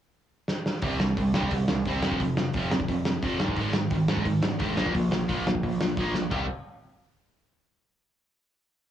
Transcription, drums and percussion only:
0.48 snare
0.66 snare
0.81 kick, open hi-hat
1.00 snare
1.17 kick, open hi-hat
1.34 snare
1.43 kick
1.51 kick, open hi-hat
1.68 snare
1.85 kick, open hi-hat
2.03 snare
2.12 kick
2.20 kick, open hi-hat
2.37 snare
2.54 kick, open hi-hat
2.72 snare
2.80 kick
2.89 kick, open hi-hat
3.06 snare
3.23 kick, open hi-hat
3.40 snare
3.48 kick
3.56 kick, open hi-hat
3.74 snare
3.91 kick, open hi-hat
4.09 snare
4.17 kick
4.26 kick, open hi-hat
4.43 snare
4.60 kick, open hi-hat
4.77 snare
4.86 kick
4.95 kick, open hi-hat
5.12 snare
5.29 kick, open hi-hat
5.47 snare
5.55 kick
5.63 kick, open hi-hat
5.81 snare
5.97 kick, open hi-hat
6.14 snare
6.31 kick, china

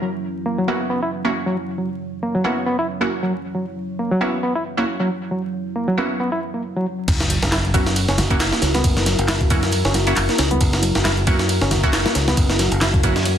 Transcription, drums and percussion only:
7.08 kick, closed hi-hat, crash, ride, muted conga
7.20 snare, closed hi-hat
7.30 closed hi-hat, ride
7.42 snare, closed hi-hat, muted conga
7.52 snare, clap, closed hi-hat, ride, high conga
7.65 closed hi-hat
7.74 kick, closed hi-hat, ride
7.86 snare, closed hi-hat, muted conga
7.96 closed hi-hat, ride
8.08 snare, closed hi-hat
8.18 snare, closed hi-hat, ride, muted conga, high conga, low conga
8.31 kick, closed hi-hat
8.40 snare, clap, closed hi-hat, ride
8.52 snare, closed hi-hat
8.62 snare, closed hi-hat, ride, muted conga
8.75 snare, closed hi-hat, high conga
8.84 kick, closed hi-hat, ride
8.97 snare, closed hi-hat, muted conga
9.06 snare, closed hi-hat, ride
9.19 closed hi-hat, ride
9.28 snare, clap, closed hi-hat, ride, high conga
9.41 kick, closed hi-hat, muted conga
9.50 kick, closed hi-hat, ride, low conga
9.63 snare, closed hi-hat
9.72 closed hi-hat, ride, muted conga
9.85 snare, closed hi-hat
9.94 snare, closed hi-hat, ride, high conga
10.07 closed hi-hat
10.16 clap, closed hi-hat, ride, muted conga
10.29 snare, closed hi-hat
10.38 snare, closed hi-hat, ride
10.51 closed hi-hat, muted conga, high conga
10.61 kick, closed hi-hat, ride
10.73 snare, closed hi-hat
10.83 closed hi-hat, ride
10.95 snare, closed hi-hat, muted conga
11.05 snare, clap, closed hi-hat, ride, high conga
11.17 closed hi-hat
11.27 kick, closed hi-hat, ride, muted conga
11.39 snare, closed hi-hat
11.49 closed hi-hat, ride
11.61 snare, closed hi-hat
11.71 snare, closed hi-hat, ride, muted conga, high conga, low conga
11.84 kick, closed hi-hat
11.93 snare, clap, closed hi-hat, ride
12.06 snare, closed hi-hat, muted conga
12.15 snare, closed hi-hat, ride
12.28 snare, closed hi-hat, high conga
12.37 kick, closed hi-hat, ride
12.50 snare, closed hi-hat, muted conga
12.59 snare, closed hi-hat, ride
12.72 closed hi-hat, ride
12.81 snare, clap, closed hi-hat, ride, muted conga, high conga
12.94 kick, closed hi-hat
13.03 kick, closed hi-hat, ride, low conga
13.16 snare, closed hi-hat
13.25 closed hi-hat, ride, muted conga

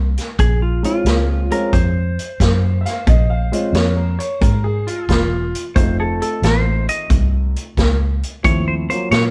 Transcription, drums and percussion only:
0.18 snare, closed hi-hat
0.39 kick, closed hi-hat
0.84 closed hi-hat
1.06 snare, closed hi-hat
1.51 closed hi-hat
1.73 kick, closed hi-hat
2.19 closed hi-hat
2.40 kick, snare, closed hi-hat
2.86 snare, closed hi-hat
3.07 kick, closed hi-hat
3.53 closed hi-hat
3.75 snare, closed hi-hat
4.20 closed hi-hat
4.42 kick, closed hi-hat
4.87 closed hi-hat
5.09 kick, snare, closed hi-hat
5.55 closed hi-hat
5.76 kick, closed hi-hat
6.22 closed hi-hat
6.43 snare, closed hi-hat
6.89 closed hi-hat
7.10 kick, closed hi-hat
7.56 closed hi-hat
7.77 kick, snare, closed hi-hat
8.23 closed hi-hat
8.44 kick, closed hi-hat
8.90 closed hi-hat
9.11 snare, closed hi-hat

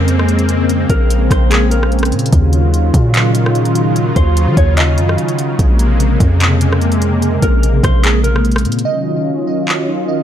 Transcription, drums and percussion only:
0.08 closed hi-hat
0.19 cross-stick
0.28 closed hi-hat
0.39 closed hi-hat
0.49 closed hi-hat
0.69 closed hi-hat
0.90 kick, closed hi-hat
1.10 closed hi-hat
1.31 kick, cross-stick, closed hi-hat
1.51 clap, closed hi-hat
1.71 closed hi-hat
1.83 cross-stick
1.92 closed hi-hat
1.99 closed hi-hat
2.03 cross-stick, closed hi-hat
2.12 closed hi-hat
2.19 closed hi-hat
2.26 closed hi-hat
2.33 kick, closed hi-hat
2.53 closed hi-hat
2.74 closed hi-hat
2.94 kick, closed hi-hat
3.14 clap, closed hi-hat
3.35 closed hi-hat
3.46 cross-stick
3.55 closed hi-hat
3.65 closed hi-hat
3.75 closed hi-hat
3.96 closed hi-hat
4.16 kick, closed hi-hat
4.37 closed hi-hat
4.57 kick, closed hi-hat
4.77 clap, closed hi-hat
4.98 closed hi-hat
5.09 cross-stick
5.18 closed hi-hat
5.28 closed hi-hat
5.39 closed hi-hat
5.59 kick, closed hi-hat
5.79 closed hi-hat
6.00 closed hi-hat
6.20 kick, closed hi-hat
6.40 clap, closed hi-hat
6.61 closed hi-hat
6.72 cross-stick
6.81 closed hi-hat
6.92 closed hi-hat
7.02 closed hi-hat
7.22 closed hi-hat
7.42 kick, closed hi-hat
7.63 closed hi-hat
7.83 kick, cross-stick, closed hi-hat
8.04 clap, closed hi-hat
8.24 closed hi-hat
8.36 cross-stick
8.45 closed hi-hat
8.52 closed hi-hat
8.56 cross-stick, closed hi-hat
8.65 closed hi-hat
8.72 closed hi-hat
8.79 closed hi-hat
9.69 clap

